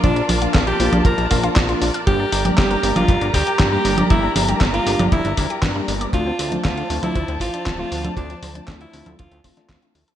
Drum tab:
HH |xxoxxxoxxxoxxxox|x-oxxxoxxxoxx-ox|x-oxxxoxxxoxx-ox|x-oxxxoxxxoxx-ox|
CP |----x-------x---|----x-------x---|----x-------x---|----x-------x---|
SD |----o-------o---|----o-------o---|----o-------o---|----o-------o---|
CG |--o----o--------|---o---o-------o|--o----o--------|---o---o-------o|
BD |o---o---o-o-o---|o---o---o-o-o---|o---o---o-o-o---|o---o---o-o-o---|

HH |xxoxxxoxxxoxxxox|
CP |----x-------x---|
SD |----o------oo---|
CG |--o----o--------|
BD |o---o---o-o-o---|